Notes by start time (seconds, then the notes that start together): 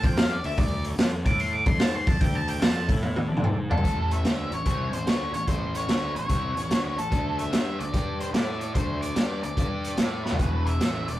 0.04 F2 C4 F4 C5 F5 G5, kick, open hi-hat
0.17 F5, snare, open hi-hat
0.32 D5
0.43 D2 A3 D4 A4 D5 E5, open hi-hat
0.58 D2 D5, kick, open hi-hat
0.84 A3 D4 A4 C#5, open hi-hat
0.98 F2 A3 D4 A4 D5, snare, open hi-hat
1.25 A2 A3 E4 A4 E5 D6, kick, open hi-hat
1.40 C6, open hi-hat
1.53 D6
1.66 F2 A3 D4 A4 D5 C6, kick, open hi-hat
1.79 G#2 A5, snare, open hi-hat
1.95 C6
2.07 F2 A3 D4 A4 D5 A5, kick, open hi-hat
2.21 D2 A3 D4 A4 D5 G5, kick, open hi-hat
2.35 A5
2.47 A3 D4 A4 E5 G5, open hi-hat
2.60 F2 A3 D4 A4 D5 A5, snare, open hi-hat
2.87 A2 A3 E4 A4 E5, kick, open hi-hat
3.03 high tom
3.16 high tom
3.28 F2 A3 D4 A4 D5
3.37 mid tom
3.44 G#2, mid tom
3.69 F2 A3 D4 A4 D5, floor tom
3.78 floor tom
3.83 A1 A2 E3 A3, kick, closed hi-hat
4.11 E5, closed hi-hat
4.24 D2 D3 A3 D4, snare, closed hi-hat
4.51 A1 A2 E3 C#5, closed hi-hat
4.65 C2 C3 G3 C4, kick, closed hi-hat
4.92 A1 A2 E3 C5, closed hi-hat
5.06 D2 D3 A3 D4 C#5, snare, closed hi-hat
5.32 A1 A2 E3 C#5, closed hi-hat
5.47 A1 A2 E3 A3 C5, kick, closed hi-hat
5.75 C#5, closed hi-hat
5.88 D2 D3 A3 D4, snare, closed hi-hat
6.15 A1 A2 E3 C#5, closed hi-hat
6.29 C2 C3 G3 C4, kick, closed hi-hat
6.56 A1 A2 E3, closed hi-hat
6.70 D2 D3 A3 D4, snare, closed hi-hat
6.97 A1 A2 E3 A4, closed hi-hat
7.11 D2 D3 A3 D4, kick, closed hi-hat
7.39 E5, closed hi-hat
7.51 G2 G3 D4 G4 E5, snare, closed hi-hat
7.79 D2 D3 A3 D5, closed hi-hat
7.93 G2 G3 D4 G4, kick, closed hi-hat
8.20 C5, closed hi-hat
8.33 A2 A3 E4 A4 D5, snare, closed hi-hat
8.61 D5, closed hi-hat
8.74 D2 D3 A3 D4 C5, kick, closed hi-hat
9.01 D5, closed hi-hat
9.16 G2 G3 D4 G4, snare, closed hi-hat
9.43 D2 D3 A3 D5, closed hi-hat
9.56 G2 G3 D4 G4, kick, closed hi-hat
9.84 closed hi-hat
9.97 A2 A3 E4 A4, snare, closed hi-hat
10.25 B4, snare
10.32 floor tom
10.39 E1 E2 B2 E3, kick, closed hi-hat
10.66 E5, closed hi-hat
10.80 A1 A2 E3 A3, snare, closed hi-hat
11.07 E1 E2 B2 D5, closed hi-hat